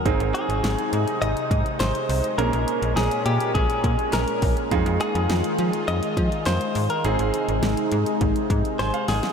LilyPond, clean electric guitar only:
\new Staff \with { instrumentName = "Clean electric guitar" } { \time 4/4 \key aes \major \tempo 4 = 103 r8 aes'4. ees''4 c''4 | bes'4 aes'8 g'8 aes'4 bes'8. r16 | r8 aes'4. ees''4 c''8. bes'16 | aes'2. c''8 aes'8 | }